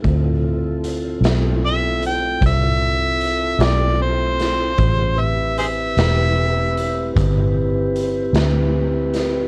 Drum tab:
HH |x-xx-xx-xx-x|x-xx-xx-xx-x|
SD |---o-----o-o|---o-----o-o|
BD |o-----o-----|o-----o-----|